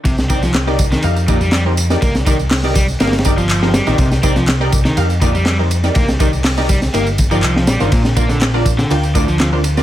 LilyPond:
<<
  \new Staff \with { instrumentName = "Synth stab" } { \time 4/4 \key c \minor \tempo 4 = 122 r8 <ees' g' bes' d''>16 r8 <ees' g' bes' d''>16 r8 <ees' g' bes' f''>16 r16 <ees' g' bes' d''>16 r8 <ees' g' bes' c''>16 r16 <ees' g' bes' d''>16~ | <ees' g' bes' d''>8 <ees' g' bes' d''>16 r8 <ees' g' bes' d''>16 r8 <ees' g' bes' f''>16 r16 <ees' g' bes' d''>16 r8 <ees' g' bes' c''>16 r16 <ees' g' bes' d''>16~ | <ees' g' bes' d''>8 <ees' g' bes' d''>16 r8 <ees' g' bes' d''>16 r8 <ees' g' bes' f''>16 r16 <ees' g' bes' d''>16 r8 <ees' g' bes' c''>16 r16 <ees' g' bes' d''>16~ | <ees' g' bes' d''>8 <ees' g' bes' d''>16 r8 <ees' g' bes' d''>16 r8 <ees' g' bes' f''>16 r8 <ees' g' bes' d''>16 r8. <d' f' bes' c''>16~ |
<d' f' bes' c''>8 <d' f' bes' d''>16 r8 <d' f' bes' d''>16 r8 <d' f' bes' g''>16 r16 <d' f' bes' d''>16 r8 <d' f' bes' c''>16 r16 <d' f' bes' d''>16 | }
  \new Staff \with { instrumentName = "Overdriven electric guitar" } { \clef bass \time 4/4 \key c \minor c16 r16 c'16 f16 r8. ees16 r8 bes,16 g16 g16 r8. | bes16 r16 ees16 r8. g16 r16 bes16 r8 f8. g16 ees16 | c16 r16 c'16 f16 r8. ees16 r8 bes,16 g16 g16 r8. | bes16 r16 ees16 r8. g16 r16 bes16 r8 f8. g16 ees16 |
bes,16 r16 bes16 d16 r8. d16 r8 a,16 f16 f16 r8. | }
  \new Staff \with { instrumentName = "Fingered electric bass" } { \clef bass \time 4/4 \key c \minor c,4.~ c,16 r16 f,4.~ f,16 r16 | c,4.~ c,16 r16 g,,4. r16 bes,,16 | c,4.~ c,16 r16 f,4.~ f,16 r16 | c,4.~ c,16 r16 g,,4 c,8 bes,,16 g,,16 |
bes,,4.~ bes,,16 r16 d,4.~ d,16 r16 | }
  \new DrumStaff \with { instrumentName = "Drums" } \drummode { \time 4/4 <bd cymr tamb>16 <sn tamb>16 <bd cymr tamb>16 <sn tamb>16 <hc cymr sn tamb>16 sn16 <bd cymr tamb>16 <sn tamb>16 <cymr tamb>16 tamb16 <bd cymr tamb>16 tamb16 <hc cymr sn tamb>8 <cymr tamb>16 <sn tamb>16 | <bd cymr tamb>16 <sn tamb>16 <bd cymr tamb>16 tamb16 <hc hho sn tamb>16 <sn tamb>16 <bd cymr tamb>16 tamb16 <cymr sn tamb>32 <cymr sn>32 <cymr sn tamb>32 <cymr sn>32 <bd cymr tamb>16 tamb16 <hc cymr tamb>16 sn16 <cymr sn tamb>16 <sn tamb>16 | <bd cymr tamb>16 <sn tamb>16 <bd cymr tamb>16 <sn tamb>16 <hc cymr sn tamb>16 sn16 <bd cymr tamb>16 <sn tamb>16 <cymr tamb>16 tamb16 <bd cymr tamb>16 tamb16 <hc cymr sn tamb>8 <cymr tamb>16 <sn tamb>16 | <bd cymr tamb>16 <sn tamb>16 <bd cymr tamb>16 tamb16 <hc hho sn tamb>16 <sn tamb>16 <bd cymr tamb>16 <sn tamb>16 <cymr tamb>16 tamb16 <bd cymr tamb>16 tamb16 <hc cymr tamb>16 sn16 <cymr sn tamb>16 <sn tamb>16 |
<bd cymr tamb>16 <sn tamb>16 <bd cymr tamb>16 <sn tamb>16 <hc cymr sn tamb>16 sn16 <bd cymr tamb>16 <sn tamb>16 <cymr tamb>16 tamb16 <bd cymr tamb>16 tamb16 <hc cymr sn tamb>8 <cymr tamb>16 <sn tamb>16 | }
>>